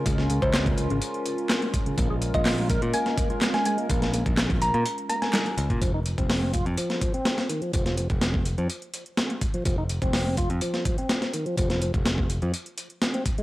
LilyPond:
<<
  \new Staff \with { instrumentName = "Synth pluck" } { \time 4/4 \key f \minor \tempo 4 = 125 r8. c''16 c''16 r2 r8. | r8. ees''16 r4 aes''16 r4 aes''16 aes''16 r16 | r4. bes''16 bes''16 r8 bes''16 aes''8. r8 | r1 |
r1 | r1 | r1 | }
  \new Staff \with { instrumentName = "Analog synth pad" } { \time 4/4 \key f \minor << { <aes bes'>1 | <aes bes'>1~ | <aes bes'>1 | r1 |
r1 | r1 | r1 | } \\ { <des' f'>1~ | <des' f'>1~ | <des' f'>1 | r1 |
r1 | r1 | r1 | } >> }
  \new Staff \with { instrumentName = "Tonewheel organ" } { \clef bass \time 4/4 \key f \minor des16 des16 des16 r4 des16 r4. r16 des16 | bes16 aes'16 r16 f'8. bes'16 r16 bes8 bes16 f'8. aes16 bes16 | bes16 bes16 bes16 r4 bes16 r8 bes16 r4 r16 | f16 ees'16 r16 c'8. f'16 r16 f8 f16 c'8. ees16 f16 |
f16 f16 f16 r4 f16 r4. r16 f16 | f16 ees'16 r16 c'8. f'16 r16 f8 f16 c'8. ees16 f16 | f16 f16 f16 r4 f16 r4 r16 c'16 r16 aes16 | }
  \new Staff \with { instrumentName = "Picked electric bass" } { \clef bass \time 4/4 \key f \minor des,8. des,4 aes,,16 r2 | bes,,8. bes,,4 bes,16 r2 | bes,,8. bes,,4 bes,16 r4. des,16 bes,16 | f,,8. f,,4 f,16 r2 |
f,,8. f,,4 f,16 r2 | f,,8. f,,4 f,16 r2 | f,,8. f,,4 f,16 r2 | }
  \new DrumStaff \with { instrumentName = "Drums" } \drummode { \time 4/4 <hh bd>16 sn16 hh16 <hh bd>16 <hc hh sn>16 <hh bd>16 hh16 hh16 hh16 hh16 hh16 hh16 <hc hh sn>16 hh16 <hh bd>16 hh16 | <hh bd>8 hh16 <hh bd>16 <hc hh hho sn>16 hh16 <hh bd>16 hh16 hh16 <hh sn>16 <hh bd>16 hh16 <hc hh sn>16 <hh sn>16 hh16 hh16 | <hh bd>16 <hh sn>16 hh16 <hh bd>16 <hc hh sn>16 <hh bd>16 hh16 hh16 hh16 hh16 hh16 <hh sn>16 <hc hh sn>16 hh16 hh16 <hh bd>16 | <hh bd>8 hh16 <hh bd>16 <hh hho sn>8 <hh bd>16 hh16 hh16 <hh sn>16 <hh bd>16 hh16 <hh sn>16 <hh sn>16 hh16 hh16 |
<hh bd>16 <hh sn>16 hh16 <hh bd>16 <hh sn>16 bd16 hh16 hh16 hh16 hh16 hh16 hh16 <hh sn>16 hh16 <hh bd>16 hh16 | <hh bd>8 hh16 <hh bd>16 <hh hho sn>8 <hh bd>16 hh16 hh16 <hh sn>16 <hh bd>16 hh16 <hh sn>16 <hh sn>16 hh16 hh16 | <hh bd>16 <hh sn>16 hh16 <hh bd>16 <hh sn>16 bd16 hh16 hh16 hh16 hh16 hh16 hh16 <hh sn>16 hh16 <hh bd>16 hh16 | }
>>